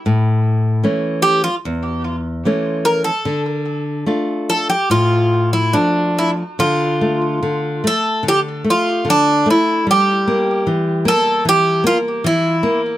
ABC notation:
X:1
M:4/4
L:1/16
Q:1/4=74
K:Dm
V:1 name="Bouzouki"
z6 G F2 z4 z B A- | A z4 z A G F3 E D2 E2 | F6 A2 G2 F2 D2 E2 | G6 A2 G2 F2 E3 z |]
V:2 name="Nylon-string guitar"
A,,4 [E,A,^C]4 E,,4 [E,A,C]4 | D,4 [A,DF]4 A,,4 [F,A,D]4 | D,2 A,2 D,2 A,2 D,2 A,2 D,2 A,2 | G,2 B,2 E,2 B,2 E,2 B,2 E,2 B,2 |]